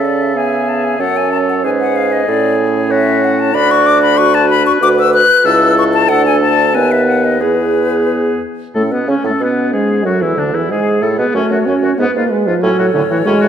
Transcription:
Already playing: C#3 C#4 A4
0.05 D5
0.22 E5
0.35 B3 G#4 E5 G#5
0.68 A5
0.85 G#5
0.99 F#2 C#4 A4 C#5 F#5
1.17 G#5
1.32 A5
1.49 F#5
1.64 G#2 G#4 B4 G#5
1.81 F#5
1.96 F5
2.12 D#5
2.27 A2 C#4 A4 D5
2.76 C#5
2.90 F#4 C#5 E5
3.24 F#5
3.39 A5
3.53 D2 D4 F#4 D5 B5
3.71 C#6
3.86 D6
4.02 B5
4.17 F#4 B4 C#6
4.34 A5
4.50 B5
4.66 C#6
4.81 D2 F#4 B4 D6
4.99 E6
5.14 F#6
5.45 C#2 E4 A4 E6
5.78 C#6
5.94 A5
6.09 D2 D4 A4 F#5
6.26 G#5
6.41 A5
6.74 D#2 B3 B4 G#5
6.91 E5
7.07 F#5
7.24 D#5
7.40 E2 B3 G#4 B4
8.75 A2 A3 C#4 A4
8.92 B2 B3 B4
9.08 C#3 C#4
9.24 A2 A3 A4
9.40 B2 B3 B4
9.73 G#2 G#3 G#4
10.04 F#2 F#3 F#4 A4
10.21 E2 E3 E4
10.37 D2 D3 D4
10.53 E2 E3 E4
10.69 G#2 G#3 G#4
11.01 A2 A3 A4
11.18 B2 B3 B4
11.34 F#2 A3 C#4 F#4 C#5
11.50 F#2 F#4
11.66 F#2 C#4
11.83 F#2 F#4
11.98 G#2 B3 B4
12.15 G#2 A#3 F4
12.31 G#3
12.47 G#2 F3 F4
12.61 A2 F#3 C#4 A4 C#5
12.79 A2 F#4
12.94 A2 D3 C#4
13.10 A2 E3 F#4
13.25 A2 G#3 C#4 F#4
13.41 A2 F#4

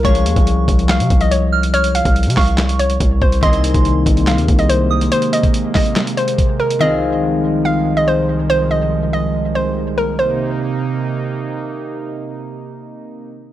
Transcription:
0.03 C2 F3 G#3 C#4 G#4 C#5 C#6, kick, closed hi-hat
0.15 closed hi-hat
0.26 D#2, closed hi-hat
0.36 C2, kick, closed hi-hat
0.47 closed hi-hat
0.68 C2, kick, closed hi-hat
0.79 closed hi-hat
0.89 F5, snare, clap, closed hi-hat
1.00 C3, closed hi-hat
1.10 C2, kick, closed hi-hat
1.21 D#5, closed hi-hat
1.31 C#5, closed hi-hat
1.53 F6
1.63 closed hi-hat
1.74 C#5 F6, closed hi-hat
1.84 closed hi-hat
1.95 F5, closed hi-hat
2.05 C2, kick, closed hi-hat
2.16 closed hi-hat
2.23 C3, closed hi-hat
2.30 closed hi-hat
2.37 C2 F5 C#6, kick, snare, clap, open hi-hat
2.48 closed hi-hat
2.58 snare, clap, closed hi-hat
2.69 closed hi-hat
2.79 C#5, closed hi-hat
2.90 closed hi-hat
3.00 C2, kick, closed hi-hat
3.22 C2 C5, kick
3.32 closed hi-hat
3.41 C2 C3 D#3 G#3 A#3 C4 G#4 D#5 C6, kick, closed hi-hat
3.53 closed hi-hat
3.64 closed hi-hat
3.74 C2, kick, closed hi-hat
3.85 closed hi-hat
4.06 C2, kick, closed hi-hat
4.17 closed hi-hat
4.27 F5, snare, clap, closed hi-hat
4.38 D#2, closed hi-hat
4.48 C2, kick, closed hi-hat
4.59 D#5, closed hi-hat
4.69 C5, closed hi-hat
4.91 D#6
5.01 closed hi-hat
5.12 C5, closed hi-hat
5.22 closed hi-hat
5.33 D#5, closed hi-hat
5.43 kick, closed hi-hat
5.54 closed hi-hat
5.75 D#5, kick, snare, clap, open hi-hat
5.86 closed hi-hat
5.96 snare, clap, closed hi-hat
6.07 closed hi-hat
6.17 C5, closed hi-hat
6.28 closed hi-hat
6.38 kick, closed hi-hat
6.60 A#4
6.70 closed hi-hat
6.79 C2 D#3 F3 C4 F4 G#4 D#5
7.65 F5
7.97 D#5
8.08 C5
8.50 C5
8.71 D#5
9.13 D#5
9.55 C5
9.98 A#4
10.19 C3 A#3 D#4 C5

